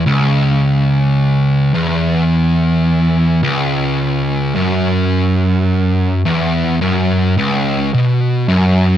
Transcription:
X:1
M:4/4
L:1/8
Q:1/4=54
K:C#m
V:1 name="Distorted electric guitar" clef=bass
C,,3 E,,3 C,,2 | F,,3 E,, F,, C,, B,, F,, |]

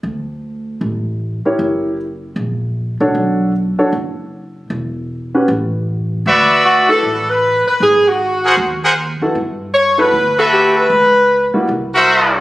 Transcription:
X:1
M:4/4
L:1/8
Q:"Swing" 1/4=155
K:D
V:1 name="Trumpet section"
z8 | z8 | z8 | z8 |
[FBde]4- [FBde] z3 | z3 [^G^A^Bf] z [GABf] z2 | z4 z [FABe]3 | z4 z [F_B=ce]3 |]
V:2 name="Saxophone section"
z8 | z8 | z8 | z8 |
z2 F A2 B2 B | ^G F4 z3 | z2 c B2 A G B- | B3 z4 z |]
V:3 name="Grand piano"
z6 z [EG_Bc]- | [EG_Bc]2 z4 z [DFAc]- | [DFAc]2 z [DFAc] z4 | z3 [CFGB] z4 |
z3 [EFAB] z4 | z6 z [B,EFA] | z3 [B,EFA] z4 | z3 [G,_B,EF] z4 |]
V:4 name="Upright bass" clef=bass
D,,4 A,,,3 z | F,,,4 ^A,,,3 =C,, | B,,,3 z F,,,4 | E,,,4 A,,,4 |
D,,4 A,,,3 z | ^G,,,4 ^D,,3 =F,, | G,,4 D,,4 | C,,3 z =C,,4 |]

